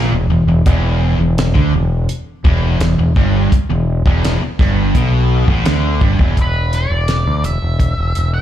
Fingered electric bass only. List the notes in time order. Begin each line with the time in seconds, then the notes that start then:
Already playing: A#1
0.12 E1
0.30 E1
0.47 E1
0.66 E1
1.19 E1
1.55 D2
1.73 E1
2.45 E1
2.81 E1
2.99 E1
3.16 G1
3.52 muted fingered electric bass stroke
3.71 E1
4.06 E1
4.42 muted fingered electric bass stroke
4.59 G1
4.95 B1
5.48 A1
5.67 D2
6.01 G1
6.19 E1
6.38 E1
6.90 E1
7.26 D2
7.44 E1
7.62 E1
7.98 E1
8.17 E1